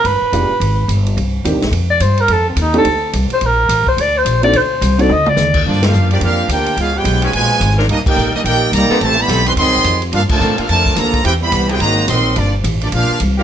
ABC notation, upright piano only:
X:1
M:4/4
L:1/8
Q:"Swing" 1/4=215
K:Gm
V:1 name="Upright piano"
z2 [_A,=B,DFG] z4 z | z2 [B,CDEG] z4 z | z3 [A,CDEG] z4 | z6 z [CDE^FA] |
z3 [CDE^FA] z4 | z8 | z8 | z8 |
z8 | z8 | z8 | z8 |]